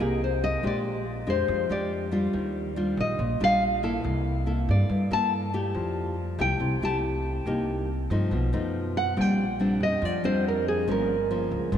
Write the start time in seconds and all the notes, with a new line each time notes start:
Already playing: C3
0.00 C2 A#3 D#4 G4 G#4
0.24 C5
0.44 D#5
0.63 A#1 A#2 G#3 D4 G4
0.67 D5
1.27 F2 G#3 D4 G4 C5
1.48 F2 F3
1.70 F2 G#3 D4 G4 D5
2.11 G3 D4 F4
2.33 D#2 D#3
2.76 G3 D4 F4
2.97 A#1 D#5
3.19 A#1 A#2
3.40 A#1 G3 D4 F4 F5
3.83 A#3 E4 A4
4.04 C2 C3
4.46 A#3 E4 A4
4.69 G2 D5
4.89 G2
5.11 G2 A#3 E4 A4 A5
5.54 A3 E4 G4
5.75 F2 F3
6.38 C2 A3 E4 G4 G5
6.60 C2 C3
6.81 C2 A3 E4 G4 A5
7.46 C2 C3 A#3 D#4 G4
8.10 G2 F3 A3 D#4
8.31 B1 B2
8.53 F#2 F3 A3 D#4
8.97 F#5
9.17 A#1 A#2 G3 C4 D4 G5
9.60 G3 C4 D4
9.80 F2 D#5
10.02 F2 F3 D5
10.23 F2 G3 C4 D4 C5
10.48 A#4
10.68 G#4
10.87 G1 G2 F3 A#3 C#4
10.91 A#4
11.31 F3 A#3 C#4
11.52 C#2
11.72 G1 G2 F3 B3 D4